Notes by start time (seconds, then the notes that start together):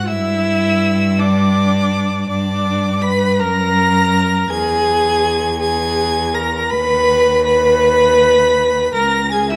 0.07 G2 E4 E5 E6
1.19 D4 D5 D6
2.29 G2 D4 D5 D6
3.01 B4 B5 B6
3.40 F#2 A#4 A#5 A#6
4.50 E2 G#4 G#5 G#6
5.59 G#4 G#5 G#6
6.34 A#4 A#5 A#6
6.70 D#2 B4 B5 B6
7.44 B4 B5 B6
8.94 C#2 A#4 A#5 A#6
9.31 G#4 G#5 G#6
9.50 E4 E5 E6